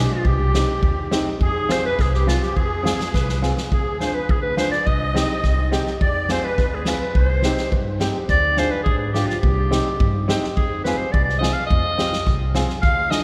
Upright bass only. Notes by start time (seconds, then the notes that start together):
0.25 C2
0.83 D#2
1.41 F2
1.99 C2
2.57 F2
3.14 C2
3.72 D2
4.29 D2
4.87 C2
5.44 C2
6.01 F2
6.58 D2
7.15 C2
7.72 G2
8.30 D2
8.87 G#2
9.43 C2
10.00 G2
10.57 F2
11.14 C2
11.71 F2
12.27 C2
12.83 D2